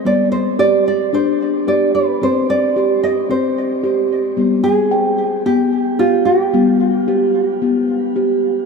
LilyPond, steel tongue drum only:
<<
  \new Staff \with { instrumentName = "Steel tongue drum" } { \time 4/4 \key g \major \tempo 4 = 111 b4 g'4 d'4 g'4 | r4 g'4 c'4 g'4 | b4 g''4 b4 g'4 | b4 g'4 b4 g'4 | }
  \new Staff \with { instrumentName = "Steel tongue drum" } { \clef bass \time 4/4 \key g \major g1 | c'1 | g1 | g1 | }
>>